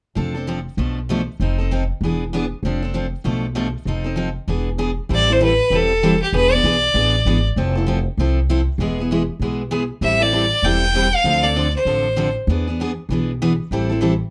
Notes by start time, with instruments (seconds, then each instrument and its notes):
0.15 upright bass F1, steel-string acoustic guitar F3 C4 D4 A4
0.34 steel-string acoustic guitar C4 D4 A4
0.47 steel-string acoustic guitar F3 C4 D4 A4
0.77 upright bass B1, steel-string acoustic guitar B2 F3 A3 D4 A4
1.09 steel-string acoustic guitar B2 F3 A3 D4 A4
1.40 upright bass F1, steel-string acoustic guitar F3 C4 D#4 A4
1.58 steel-string acoustic guitar C4 D#4 A4
1.71 steel-string acoustic guitar F3 C4 D#4 A4
2.01 upright bass E1, steel-string acoustic guitar E3 B3 D4
2.05 steel-string acoustic guitar G#4
2.33 steel-string acoustic guitar E3 B3 D4 G#4
2.63 upright bass F1, steel-string acoustic guitar F3 C4 D4 A4
2.82 steel-string acoustic guitar C4 D4 A4
2.94 steel-string acoustic guitar F3 C4 D4 A4
3.24 upright bass B1, steel-string acoustic guitar B2 F3 A3 D4 A4
3.55 steel-string acoustic guitar B2 F3 A3 D4 A4
3.85 upright bass F1, steel-string acoustic guitar F3 C4 D#4 A4
4.04 steel-string acoustic guitar C4 D#4 A4
4.16 steel-string acoustic guitar F3 C4 D#4 A4
4.48 upright bass E1, steel-string acoustic guitar E3 B3 D4 G#4
4.78 steel-string acoustic guitar E3 B3 D4 G#4
5.09 upright bass A1, steel-string acoustic guitar E3 G3 C4 E4 A4
5.15 violin D5
5.28 steel-string acoustic guitar C4 E4 A4
5.33 violin C5
5.41 steel-string acoustic guitar E3 G3 C4 E4 A4, violin B4
5.70 upright bass E1, steel-string acoustic guitar E3 G3 C4 E4 A4
5.76 violin A4
6.03 steel-string acoustic guitar E3 G3 C4 E4 A4
6.23 violin G4
6.33 upright bass E1, steel-string acoustic guitar E3 B3 D4 G#4, violin B4
6.53 steel-string acoustic guitar B3 D4 G#4, violin D5
6.63 upright bass B1, steel-string acoustic guitar E3 B3 D4 G#4
6.94 upright bass A1, steel-string acoustic guitar E3 B3 D4 G#4
7.25 upright bass G#1, steel-string acoustic guitar E3 B3 D4 G#4
7.56 upright bass F1, steel-string acoustic guitar F3 C4 E4 A4
7.75 steel-string acoustic guitar C4 E4 A4
7.86 steel-string acoustic guitar F3 C4 E4 A4
8.17 upright bass C2, steel-string acoustic guitar F3 C4 E4 A4
8.49 steel-string acoustic guitar F3 C4 E4 A4
8.78 upright bass E1, steel-string acoustic guitar E3 G#3 B3 E4 G#4
8.98 steel-string acoustic guitar B3 E4 G#4
9.11 steel-string acoustic guitar E3 G#3 B3 E4 G#4
9.39 upright bass B1, steel-string acoustic guitar E3 G#3 B3 E4 G#4
9.71 steel-string acoustic guitar E3 G#3 B3 E4 G#4
10.01 upright bass A1, steel-string acoustic guitar E3 G3 C4 E4 A4, violin E5
10.20 steel-string acoustic guitar C4 E4 A4, violin D5
10.32 steel-string acoustic guitar E3 G3 C4 E4 A4
10.62 upright bass E1, steel-string acoustic guitar E3 G3 C4 E4 A4, violin G5
10.94 steel-string acoustic guitar E3 G3 C4 E4 A4
11.15 violin F5
11.24 upright bass D2, steel-string acoustic guitar D3 F3 C4 D4 A4
11.43 steel-string acoustic guitar C4 D4 A4, violin D5
11.56 steel-string acoustic guitar D3 F3 C4 D4 A4
11.76 violin C5
11.85 upright bass A1, steel-string acoustic guitar D3 F3 C4 D4 A4
12.16 steel-string acoustic guitar D3 F3 C4 D4 A4
12.47 upright bass E2, steel-string acoustic guitar E3 B3 D4 G#4
12.67 steel-string acoustic guitar B3 D4 G#4
12.80 steel-string acoustic guitar E3 B3 D4 G#4
13.09 upright bass B1, steel-string acoustic guitar E3 B3 D4
13.13 steel-string acoustic guitar G#4
13.42 steel-string acoustic guitar E3 B3 D4 G#4
13.71 upright bass A1, steel-string acoustic guitar E3 G3 C4 E4 A4
13.90 steel-string acoustic guitar C4 E4 A4
14.01 steel-string acoustic guitar E3 G3 C4 E4 A4